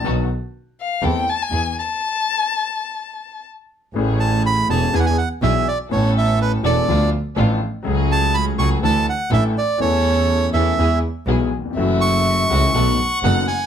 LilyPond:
<<
  \new Staff \with { instrumentName = "Violin" } { \time 4/4 \key e \phrygian \tempo 4 = 123 r4. f''8 g''8 a''16 gis''8. a''8~ | a''2. r4 | \key a \major r1 | r1 |
r1 | r1 | e''2 fis''2 | }
  \new Staff \with { instrumentName = "Bandoneon" } { \time 4/4 \key e \phrygian r1 | r1 | \key a \major r8 a''8 b''8 a''8 gis''32 fis''32 gis''16 fis''8 e''8 d''8 | cis''8 e''8 b'8 d''4 r4. |
r8 a''8 b''8 cis'''8 a''8 fis''8 e''8 d''8 | cis''4. e''4 r4. | r8 cis'''2~ cis'''8 fis''8 gis''8 | }
  \new Staff \with { instrumentName = "String section" } { \time 4/4 \key e \phrygian <b dis' fis'>8 r4. <c' e' a'>8 r8 <b e' gis'>8 r8 | r1 | \key a \major <a cis' gis'>4. <a cis' gis'>8 <d' e' gis'>8 r8 <d' e' gis'>8 r8 | <b cis' a'>4. <b cis' a'>8 <b d' f'>8 r8 <b d' f'>8 r8 |
<a fis' gis'>4. <a fis' gis'>8 <d' e' a'>8 r8 <d' e' a'>8 r8 | <cis' e' a'>4. <cis' e' a'>8 <b e' gis'>8 r8 <b e' gis'>8 r8 | <a e' fis'>4. <a e' fis'>8 <b dis' a'>8 r8 <b dis' a'>8 r8 | }
  \new Staff \with { instrumentName = "Grand piano" } { \clef bass \time 4/4 \key e \phrygian <b,, b, dis fis b fis'>8 r4. <e, e a c' a'>8 r8 <e, e>8 r8 | r1 | \key a \major <a,, a, e a cis' gis'>4. <e,, e, e a cis' gis'>8 <e, e b d' gis'>8 r8 <b,, b, e b d' gis'>8 r8 | <a,, a, e b cis' a'>4. <e,, e, e b cis' a'>8 <d, d f b d' a'>8 r8 <a,, a, f b d' a'>8 r8 |
<cis, cis fis a cis' gis'>4. <cis, cis fis a cis' gis'>8 <d, d e a d' a'>8 r8 <a,, a, e a d' a'>8 r8 | <e, e a cis' a'>4. <e, e a cis' a'>8 <e, e gis b gis'>8 r8 <b,, b, e gis b gis'>8 r32 dis,32 e,32 f,32 | <fis, e fis a cis' fis'>4. <cis, cis e a cis' fis'>8 <b,, b, dis a b fis'>8 r8 <fis,, fis, dis a b fis'>8 r8 | }
  \new Staff \with { instrumentName = "Double bass" } { \clef bass \time 4/4 \key e \phrygian b,,8 r4. e,8 r8 e,8 r8 | r1 | \key a \major a,,4. e,,8 e,8 r8 b,,8 r8 | a,,4. e,,8 d,8 r8 a,,8 r8 |
cis,4. cis,8 d,8 r8 a,,8 r8 | e,4. e,8 e,8 r8 b,,8 r8 | fis,,4. cis,8 b,,8 r8 fis,,8 r8 | }
>>